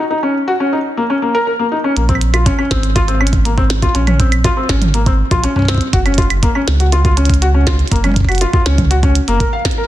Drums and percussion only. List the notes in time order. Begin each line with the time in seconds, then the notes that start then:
1.97 closed hi-hat
2.09 kick, closed hi-hat
2.15 claves
2.21 closed hi-hat
2.34 closed hi-hat, claves
2.46 kick, closed hi-hat
2.59 claves
2.71 kick, snare, closed hi-hat
2.83 closed hi-hat
2.96 kick, closed hi-hat
3.08 closed hi-hat
3.21 claves
3.27 closed hi-hat
3.33 kick, closed hi-hat
3.45 closed hi-hat
3.58 kick
3.70 snare, closed hi-hat
3.82 kick, closed hi-hat
3.95 closed hi-hat
4.07 closed hi-hat, mid tom, claves
4.20 kick, closed hi-hat
4.32 closed hi-hat, claves
4.44 kick, closed hi-hat
4.69 kick, snare, closed hi-hat
4.82 closed hi-hat, mid tom
4.94 closed hi-hat
5.06 kick, closed hi-hat
5.31 kick, closed hi-hat
5.44 closed hi-hat
5.56 kick
5.59 kick
5.62 kick
5.65 kick
5.68 kick, snare, closed hi-hat
5.71 kick
5.75 kick
5.78 kick, closed hi-hat
5.93 kick, closed hi-hat
6.06 closed hi-hat, claves
6.14 closed hi-hat
6.18 kick, closed hi-hat
6.30 closed hi-hat, claves
6.43 kick, closed hi-hat
6.55 claves
6.68 snare, closed hi-hat
6.80 closed hi-hat
6.92 closed hi-hat
7.05 kick, closed hi-hat
7.17 closed hi-hat
7.25 closed hi-hat
7.30 kick, closed hi-hat
7.34 closed hi-hat
7.42 closed hi-hat
7.67 kick, snare, closed hi-hat
7.79 closed hi-hat
7.88 kick, closed hi-hat
7.92 closed hi-hat
7.96 closed hi-hat
8.04 closed hi-hat, mid tom, claves
8.06 mid tom
8.09 mid tom
8.11 mid tom
8.14 kick, closed hi-hat, mid tom
8.20 kick
8.25 kick
8.29 closed hi-hat, claves
8.32 closed hi-hat
8.35 closed hi-hat
8.38 closed hi-hat
8.41 closed hi-hat
8.53 kick
8.66 snare, closed hi-hat
8.78 kick, closed hi-hat, mid tom
8.91 closed hi-hat
9.03 kick, closed hi-hat
9.15 closed hi-hat
9.28 closed hi-hat
9.40 kick, closed hi-hat
9.65 kick, snare, closed hi-hat
9.71 closed hi-hat